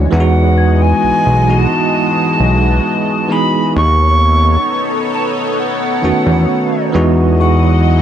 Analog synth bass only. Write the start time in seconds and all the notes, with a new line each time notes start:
0.12 E2
1.03 B1
1.26 B1
2.40 B1
3.76 D#2
6.03 E2
6.26 E2
6.94 E2